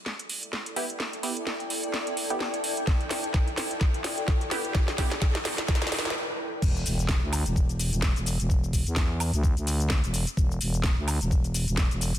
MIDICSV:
0, 0, Header, 1, 7, 480
1, 0, Start_track
1, 0, Key_signature, 1, "minor"
1, 0, Tempo, 468750
1, 1023, Time_signature, 4, 2, 24, 8
1, 12481, End_track
2, 0, Start_track
2, 0, Title_t, "Ambient pad"
2, 0, Program_c, 0, 92
2, 0, Note_on_c, 0, 64, 85
2, 0, Note_on_c, 0, 69, 89
2, 0, Note_on_c, 0, 74, 82
2, 0, Note_on_c, 0, 79, 90
2, 6300, Note_off_c, 0, 79, 0
2, 6302, Note_off_c, 0, 64, 0
2, 6302, Note_off_c, 0, 74, 0
2, 6303, Note_off_c, 0, 69, 0
2, 12481, End_track
3, 0, Start_track
3, 0, Title_t, "Synth stab"
3, 0, Program_c, 1, 62
3, 782, Note_on_c, 1, 59, 91
3, 782, Note_on_c, 1, 64, 82
3, 782, Note_on_c, 1, 67, 98
3, 871, Note_off_c, 1, 67, 0
3, 872, Note_off_c, 1, 59, 0
3, 872, Note_off_c, 1, 64, 0
3, 1261, Note_on_c, 1, 59, 78
3, 1261, Note_on_c, 1, 64, 72
3, 1261, Note_on_c, 1, 67, 82
3, 1351, Note_off_c, 1, 59, 0
3, 1351, Note_off_c, 1, 64, 0
3, 1351, Note_off_c, 1, 67, 0
3, 2357, Note_on_c, 1, 67, 106
3, 2358, Note_on_c, 1, 59, 94
3, 2358, Note_on_c, 1, 64, 86
3, 2426, Note_off_c, 1, 59, 0
3, 2426, Note_off_c, 1, 64, 0
3, 2426, Note_off_c, 1, 67, 0
3, 4621, Note_on_c, 1, 59, 89
3, 4622, Note_on_c, 1, 64, 83
3, 4622, Note_on_c, 1, 67, 98
3, 4711, Note_off_c, 1, 59, 0
3, 4711, Note_off_c, 1, 64, 0
3, 4711, Note_off_c, 1, 67, 0
3, 5101, Note_on_c, 1, 59, 77
3, 5101, Note_on_c, 1, 64, 74
3, 5101, Note_on_c, 1, 67, 90
3, 5191, Note_off_c, 1, 59, 0
3, 5191, Note_off_c, 1, 64, 0
3, 5191, Note_off_c, 1, 67, 0
3, 12481, End_track
4, 0, Start_track
4, 0, Title_t, "FM bass"
4, 0, Program_c, 2, 39
4, 6782, Note_on_c, 2, 28, 96
4, 7006, Note_off_c, 2, 28, 0
4, 7022, Note_on_c, 2, 28, 99
4, 7377, Note_off_c, 2, 28, 0
4, 7398, Note_on_c, 2, 38, 98
4, 7617, Note_off_c, 2, 38, 0
4, 7638, Note_on_c, 2, 28, 94
4, 8097, Note_off_c, 2, 28, 0
4, 8117, Note_on_c, 2, 28, 98
4, 8336, Note_off_c, 2, 28, 0
4, 8356, Note_on_c, 2, 28, 96
4, 8576, Note_off_c, 2, 28, 0
4, 8596, Note_on_c, 2, 28, 99
4, 9056, Note_off_c, 2, 28, 0
4, 9077, Note_on_c, 2, 40, 99
4, 9536, Note_off_c, 2, 40, 0
4, 9557, Note_on_c, 2, 38, 96
4, 9776, Note_off_c, 2, 38, 0
4, 9795, Note_on_c, 2, 38, 95
4, 10256, Note_off_c, 2, 38, 0
4, 10277, Note_on_c, 2, 28, 96
4, 10496, Note_off_c, 2, 28, 0
4, 10621, Note_on_c, 2, 28, 102
4, 10846, Note_off_c, 2, 28, 0
4, 10860, Note_on_c, 2, 28, 97
4, 11216, Note_off_c, 2, 28, 0
4, 11238, Note_on_c, 2, 38, 97
4, 11457, Note_off_c, 2, 38, 0
4, 11477, Note_on_c, 2, 28, 96
4, 11937, Note_off_c, 2, 28, 0
4, 11958, Note_on_c, 2, 28, 96
4, 12177, Note_off_c, 2, 28, 0
4, 12196, Note_on_c, 2, 28, 97
4, 12416, Note_off_c, 2, 28, 0
4, 12437, Note_on_c, 2, 28, 96
4, 12481, Note_off_c, 2, 28, 0
4, 12481, End_track
5, 0, Start_track
5, 0, Title_t, "Riser"
5, 0, Program_c, 3, 103
5, 0, Note_on_c, 3, 60, 81
5, 6302, Note_off_c, 3, 60, 0
5, 12481, End_track
6, 0, Start_track
6, 0, Title_t, "Sub drop"
6, 0, Program_c, 4, 103
6, 6782, Note_on_c, 4, 60, 80
6, 8703, Note_off_c, 4, 60, 0
6, 12481, End_track
7, 0, Start_track
7, 0, Title_t, "Drums"
7, 63, Note_on_c, 9, 38, 51
7, 165, Note_off_c, 9, 38, 0
7, 199, Note_on_c, 9, 42, 55
7, 301, Note_off_c, 9, 42, 0
7, 302, Note_on_c, 9, 46, 99
7, 404, Note_off_c, 9, 46, 0
7, 439, Note_on_c, 9, 42, 66
7, 541, Note_off_c, 9, 42, 0
7, 543, Note_on_c, 9, 38, 54
7, 645, Note_off_c, 9, 38, 0
7, 679, Note_on_c, 9, 42, 54
7, 781, Note_off_c, 9, 42, 0
7, 782, Note_on_c, 9, 46, 99
7, 885, Note_off_c, 9, 46, 0
7, 920, Note_on_c, 9, 42, 67
7, 1022, Note_off_c, 9, 42, 0
7, 1023, Note_on_c, 9, 38, 55
7, 1125, Note_off_c, 9, 38, 0
7, 1160, Note_on_c, 9, 42, 37
7, 1262, Note_off_c, 9, 42, 0
7, 1262, Note_on_c, 9, 46, 109
7, 1364, Note_off_c, 9, 46, 0
7, 1399, Note_on_c, 9, 42, 65
7, 1501, Note_off_c, 9, 42, 0
7, 1503, Note_on_c, 9, 38, 59
7, 1605, Note_off_c, 9, 38, 0
7, 1639, Note_on_c, 9, 42, 36
7, 1742, Note_off_c, 9, 42, 0
7, 1743, Note_on_c, 9, 46, 111
7, 1845, Note_off_c, 9, 46, 0
7, 1879, Note_on_c, 9, 42, 66
7, 1982, Note_off_c, 9, 42, 0
7, 1983, Note_on_c, 9, 38, 66
7, 2085, Note_off_c, 9, 38, 0
7, 2119, Note_on_c, 9, 42, 55
7, 2222, Note_off_c, 9, 42, 0
7, 2222, Note_on_c, 9, 46, 108
7, 2325, Note_off_c, 9, 46, 0
7, 2358, Note_on_c, 9, 42, 62
7, 2461, Note_off_c, 9, 42, 0
7, 2462, Note_on_c, 9, 38, 66
7, 2564, Note_off_c, 9, 38, 0
7, 2598, Note_on_c, 9, 42, 55
7, 2701, Note_off_c, 9, 42, 0
7, 2701, Note_on_c, 9, 46, 104
7, 2804, Note_off_c, 9, 46, 0
7, 2838, Note_on_c, 9, 42, 71
7, 2941, Note_off_c, 9, 42, 0
7, 2941, Note_on_c, 9, 36, 127
7, 2941, Note_on_c, 9, 38, 70
7, 3044, Note_off_c, 9, 36, 0
7, 3044, Note_off_c, 9, 38, 0
7, 3078, Note_on_c, 9, 42, 35
7, 3180, Note_off_c, 9, 42, 0
7, 3181, Note_on_c, 9, 38, 74
7, 3181, Note_on_c, 9, 46, 106
7, 3283, Note_off_c, 9, 38, 0
7, 3283, Note_off_c, 9, 46, 0
7, 3317, Note_on_c, 9, 42, 66
7, 3420, Note_off_c, 9, 42, 0
7, 3421, Note_on_c, 9, 36, 118
7, 3421, Note_on_c, 9, 38, 77
7, 3523, Note_off_c, 9, 38, 0
7, 3524, Note_off_c, 9, 36, 0
7, 3559, Note_on_c, 9, 42, 34
7, 3661, Note_off_c, 9, 42, 0
7, 3662, Note_on_c, 9, 38, 82
7, 3662, Note_on_c, 9, 46, 115
7, 3764, Note_off_c, 9, 38, 0
7, 3764, Note_off_c, 9, 46, 0
7, 3798, Note_on_c, 9, 42, 62
7, 3900, Note_off_c, 9, 42, 0
7, 3901, Note_on_c, 9, 36, 127
7, 3901, Note_on_c, 9, 38, 81
7, 4003, Note_off_c, 9, 38, 0
7, 4004, Note_off_c, 9, 36, 0
7, 4038, Note_on_c, 9, 42, 52
7, 4140, Note_off_c, 9, 42, 0
7, 4140, Note_on_c, 9, 38, 84
7, 4140, Note_on_c, 9, 46, 109
7, 4243, Note_off_c, 9, 38, 0
7, 4243, Note_off_c, 9, 46, 0
7, 4277, Note_on_c, 9, 42, 63
7, 4380, Note_off_c, 9, 42, 0
7, 4381, Note_on_c, 9, 36, 125
7, 4381, Note_on_c, 9, 38, 84
7, 4483, Note_off_c, 9, 38, 0
7, 4484, Note_off_c, 9, 36, 0
7, 4518, Note_on_c, 9, 42, 51
7, 4620, Note_off_c, 9, 42, 0
7, 4621, Note_on_c, 9, 38, 88
7, 4621, Note_on_c, 9, 46, 110
7, 4724, Note_off_c, 9, 38, 0
7, 4724, Note_off_c, 9, 46, 0
7, 4757, Note_on_c, 9, 42, 67
7, 4860, Note_off_c, 9, 42, 0
7, 4861, Note_on_c, 9, 38, 90
7, 4862, Note_on_c, 9, 36, 127
7, 4963, Note_off_c, 9, 38, 0
7, 4964, Note_off_c, 9, 36, 0
7, 4997, Note_on_c, 9, 38, 78
7, 4997, Note_on_c, 9, 42, 35
7, 5099, Note_off_c, 9, 38, 0
7, 5099, Note_off_c, 9, 42, 0
7, 5101, Note_on_c, 9, 38, 92
7, 5101, Note_on_c, 9, 46, 107
7, 5102, Note_on_c, 9, 36, 64
7, 5204, Note_off_c, 9, 36, 0
7, 5204, Note_off_c, 9, 38, 0
7, 5204, Note_off_c, 9, 46, 0
7, 5238, Note_on_c, 9, 38, 85
7, 5238, Note_on_c, 9, 42, 65
7, 5341, Note_off_c, 9, 38, 0
7, 5341, Note_off_c, 9, 42, 0
7, 5341, Note_on_c, 9, 38, 97
7, 5342, Note_on_c, 9, 36, 118
7, 5444, Note_off_c, 9, 36, 0
7, 5444, Note_off_c, 9, 38, 0
7, 5478, Note_on_c, 9, 38, 84
7, 5478, Note_on_c, 9, 42, 34
7, 5580, Note_off_c, 9, 38, 0
7, 5580, Note_off_c, 9, 42, 0
7, 5582, Note_on_c, 9, 38, 101
7, 5582, Note_on_c, 9, 46, 115
7, 5684, Note_off_c, 9, 38, 0
7, 5684, Note_off_c, 9, 46, 0
7, 5718, Note_on_c, 9, 38, 86
7, 5718, Note_on_c, 9, 42, 65
7, 5820, Note_off_c, 9, 38, 0
7, 5820, Note_off_c, 9, 42, 0
7, 5821, Note_on_c, 9, 36, 127
7, 5821, Note_on_c, 9, 38, 103
7, 5890, Note_off_c, 9, 38, 0
7, 5890, Note_on_c, 9, 38, 91
7, 5924, Note_off_c, 9, 36, 0
7, 5958, Note_off_c, 9, 38, 0
7, 5958, Note_on_c, 9, 38, 91
7, 5958, Note_on_c, 9, 42, 53
7, 6009, Note_off_c, 9, 38, 0
7, 6009, Note_on_c, 9, 38, 94
7, 6060, Note_off_c, 9, 42, 0
7, 6062, Note_off_c, 9, 38, 0
7, 6062, Note_on_c, 9, 38, 107
7, 6062, Note_on_c, 9, 46, 115
7, 6130, Note_off_c, 9, 38, 0
7, 6130, Note_on_c, 9, 38, 91
7, 6164, Note_off_c, 9, 46, 0
7, 6199, Note_off_c, 9, 38, 0
7, 6199, Note_on_c, 9, 38, 93
7, 6199, Note_on_c, 9, 42, 63
7, 6250, Note_off_c, 9, 38, 0
7, 6250, Note_on_c, 9, 38, 91
7, 6301, Note_off_c, 9, 42, 0
7, 6352, Note_off_c, 9, 38, 0
7, 6782, Note_on_c, 9, 36, 126
7, 6782, Note_on_c, 9, 49, 102
7, 6790, Note_on_c, 9, 69, 43
7, 6884, Note_off_c, 9, 36, 0
7, 6885, Note_off_c, 9, 49, 0
7, 6892, Note_off_c, 9, 69, 0
7, 6926, Note_on_c, 9, 69, 31
7, 7023, Note_on_c, 9, 46, 105
7, 7029, Note_off_c, 9, 69, 0
7, 7030, Note_on_c, 9, 69, 79
7, 7125, Note_off_c, 9, 46, 0
7, 7132, Note_off_c, 9, 69, 0
7, 7159, Note_on_c, 9, 42, 70
7, 7166, Note_on_c, 9, 69, 34
7, 7256, Note_on_c, 9, 38, 123
7, 7262, Note_off_c, 9, 42, 0
7, 7262, Note_on_c, 9, 36, 115
7, 7269, Note_off_c, 9, 69, 0
7, 7270, Note_on_c, 9, 69, 44
7, 7359, Note_off_c, 9, 38, 0
7, 7364, Note_off_c, 9, 36, 0
7, 7372, Note_off_c, 9, 69, 0
7, 7502, Note_on_c, 9, 46, 108
7, 7502, Note_on_c, 9, 76, 61
7, 7509, Note_on_c, 9, 69, 82
7, 7604, Note_off_c, 9, 46, 0
7, 7604, Note_off_c, 9, 76, 0
7, 7612, Note_off_c, 9, 69, 0
7, 7638, Note_on_c, 9, 42, 68
7, 7645, Note_on_c, 9, 69, 34
7, 7741, Note_off_c, 9, 42, 0
7, 7742, Note_on_c, 9, 36, 121
7, 7748, Note_off_c, 9, 69, 0
7, 7749, Note_on_c, 9, 69, 45
7, 7844, Note_off_c, 9, 36, 0
7, 7852, Note_off_c, 9, 69, 0
7, 7878, Note_on_c, 9, 42, 55
7, 7885, Note_on_c, 9, 69, 32
7, 7980, Note_off_c, 9, 42, 0
7, 7982, Note_on_c, 9, 46, 105
7, 7988, Note_off_c, 9, 69, 0
7, 7989, Note_on_c, 9, 69, 80
7, 8084, Note_off_c, 9, 46, 0
7, 8091, Note_off_c, 9, 69, 0
7, 8118, Note_on_c, 9, 42, 68
7, 8126, Note_on_c, 9, 69, 34
7, 8215, Note_on_c, 9, 38, 127
7, 8221, Note_off_c, 9, 42, 0
7, 8222, Note_on_c, 9, 36, 127
7, 8228, Note_off_c, 9, 69, 0
7, 8229, Note_on_c, 9, 69, 45
7, 8318, Note_off_c, 9, 38, 0
7, 8324, Note_off_c, 9, 36, 0
7, 8331, Note_off_c, 9, 69, 0
7, 8358, Note_on_c, 9, 42, 59
7, 8365, Note_on_c, 9, 69, 33
7, 8460, Note_off_c, 9, 42, 0
7, 8462, Note_on_c, 9, 46, 103
7, 8468, Note_off_c, 9, 69, 0
7, 8469, Note_on_c, 9, 69, 79
7, 8564, Note_off_c, 9, 46, 0
7, 8571, Note_off_c, 9, 69, 0
7, 8599, Note_on_c, 9, 42, 72
7, 8606, Note_on_c, 9, 69, 35
7, 8701, Note_off_c, 9, 42, 0
7, 8702, Note_on_c, 9, 36, 126
7, 8708, Note_off_c, 9, 69, 0
7, 8710, Note_on_c, 9, 69, 44
7, 8804, Note_off_c, 9, 36, 0
7, 8812, Note_off_c, 9, 69, 0
7, 8846, Note_on_c, 9, 69, 30
7, 8941, Note_on_c, 9, 36, 62
7, 8943, Note_on_c, 9, 46, 110
7, 8949, Note_off_c, 9, 69, 0
7, 8950, Note_on_c, 9, 69, 75
7, 9044, Note_off_c, 9, 36, 0
7, 9045, Note_off_c, 9, 46, 0
7, 9053, Note_off_c, 9, 69, 0
7, 9079, Note_on_c, 9, 42, 68
7, 9086, Note_on_c, 9, 69, 33
7, 9177, Note_on_c, 9, 38, 123
7, 9181, Note_off_c, 9, 42, 0
7, 9181, Note_on_c, 9, 36, 116
7, 9189, Note_off_c, 9, 69, 0
7, 9190, Note_on_c, 9, 69, 43
7, 9279, Note_off_c, 9, 38, 0
7, 9284, Note_off_c, 9, 36, 0
7, 9292, Note_off_c, 9, 69, 0
7, 9423, Note_on_c, 9, 46, 110
7, 9423, Note_on_c, 9, 76, 59
7, 9430, Note_on_c, 9, 69, 79
7, 9525, Note_off_c, 9, 46, 0
7, 9525, Note_off_c, 9, 76, 0
7, 9532, Note_off_c, 9, 69, 0
7, 9559, Note_on_c, 9, 42, 67
7, 9566, Note_on_c, 9, 69, 33
7, 9661, Note_off_c, 9, 42, 0
7, 9661, Note_on_c, 9, 36, 127
7, 9669, Note_off_c, 9, 69, 0
7, 9670, Note_on_c, 9, 69, 44
7, 9764, Note_off_c, 9, 36, 0
7, 9772, Note_off_c, 9, 69, 0
7, 9799, Note_on_c, 9, 42, 54
7, 9806, Note_on_c, 9, 69, 30
7, 9901, Note_off_c, 9, 42, 0
7, 9902, Note_on_c, 9, 46, 113
7, 9909, Note_off_c, 9, 69, 0
7, 9909, Note_on_c, 9, 69, 78
7, 10004, Note_off_c, 9, 46, 0
7, 10011, Note_off_c, 9, 69, 0
7, 10038, Note_on_c, 9, 42, 67
7, 10045, Note_on_c, 9, 69, 34
7, 10136, Note_on_c, 9, 38, 126
7, 10140, Note_off_c, 9, 42, 0
7, 10141, Note_on_c, 9, 36, 127
7, 10148, Note_off_c, 9, 69, 0
7, 10149, Note_on_c, 9, 69, 43
7, 10239, Note_off_c, 9, 38, 0
7, 10243, Note_off_c, 9, 36, 0
7, 10252, Note_off_c, 9, 69, 0
7, 10278, Note_on_c, 9, 42, 56
7, 10286, Note_on_c, 9, 69, 32
7, 10381, Note_off_c, 9, 42, 0
7, 10381, Note_on_c, 9, 46, 112
7, 10388, Note_off_c, 9, 69, 0
7, 10388, Note_on_c, 9, 69, 75
7, 10483, Note_off_c, 9, 46, 0
7, 10490, Note_off_c, 9, 69, 0
7, 10518, Note_on_c, 9, 42, 69
7, 10526, Note_on_c, 9, 69, 33
7, 10621, Note_off_c, 9, 42, 0
7, 10621, Note_on_c, 9, 36, 127
7, 10628, Note_off_c, 9, 69, 0
7, 10629, Note_on_c, 9, 69, 43
7, 10724, Note_off_c, 9, 36, 0
7, 10731, Note_off_c, 9, 69, 0
7, 10766, Note_on_c, 9, 69, 30
7, 10862, Note_on_c, 9, 46, 111
7, 10868, Note_off_c, 9, 69, 0
7, 10869, Note_on_c, 9, 69, 73
7, 10964, Note_off_c, 9, 46, 0
7, 10971, Note_off_c, 9, 69, 0
7, 10998, Note_on_c, 9, 42, 65
7, 11005, Note_on_c, 9, 69, 32
7, 11096, Note_on_c, 9, 38, 121
7, 11100, Note_off_c, 9, 42, 0
7, 11101, Note_on_c, 9, 36, 123
7, 11107, Note_off_c, 9, 69, 0
7, 11109, Note_on_c, 9, 69, 42
7, 11198, Note_off_c, 9, 38, 0
7, 11204, Note_off_c, 9, 36, 0
7, 11211, Note_off_c, 9, 69, 0
7, 11343, Note_on_c, 9, 46, 120
7, 11343, Note_on_c, 9, 76, 62
7, 11350, Note_on_c, 9, 69, 79
7, 11445, Note_off_c, 9, 46, 0
7, 11445, Note_off_c, 9, 76, 0
7, 11452, Note_off_c, 9, 69, 0
7, 11479, Note_on_c, 9, 42, 66
7, 11486, Note_on_c, 9, 69, 33
7, 11581, Note_off_c, 9, 42, 0
7, 11582, Note_on_c, 9, 36, 127
7, 11588, Note_off_c, 9, 69, 0
7, 11589, Note_on_c, 9, 69, 43
7, 11684, Note_off_c, 9, 36, 0
7, 11691, Note_off_c, 9, 69, 0
7, 11718, Note_on_c, 9, 42, 51
7, 11725, Note_on_c, 9, 69, 30
7, 11820, Note_off_c, 9, 42, 0
7, 11821, Note_on_c, 9, 46, 115
7, 11827, Note_off_c, 9, 69, 0
7, 11828, Note_on_c, 9, 69, 75
7, 11923, Note_off_c, 9, 46, 0
7, 11931, Note_off_c, 9, 69, 0
7, 11958, Note_on_c, 9, 42, 66
7, 11965, Note_on_c, 9, 69, 32
7, 12056, Note_on_c, 9, 38, 121
7, 12060, Note_off_c, 9, 42, 0
7, 12062, Note_on_c, 9, 36, 127
7, 12067, Note_off_c, 9, 69, 0
7, 12069, Note_on_c, 9, 69, 42
7, 12158, Note_off_c, 9, 38, 0
7, 12164, Note_off_c, 9, 36, 0
7, 12171, Note_off_c, 9, 69, 0
7, 12198, Note_on_c, 9, 42, 53
7, 12205, Note_on_c, 9, 69, 32
7, 12300, Note_off_c, 9, 42, 0
7, 12301, Note_on_c, 9, 46, 109
7, 12308, Note_off_c, 9, 69, 0
7, 12308, Note_on_c, 9, 69, 74
7, 12403, Note_off_c, 9, 46, 0
7, 12410, Note_off_c, 9, 69, 0
7, 12438, Note_on_c, 9, 42, 67
7, 12445, Note_on_c, 9, 69, 34
7, 12481, Note_off_c, 9, 42, 0
7, 12481, Note_off_c, 9, 69, 0
7, 12481, End_track
0, 0, End_of_file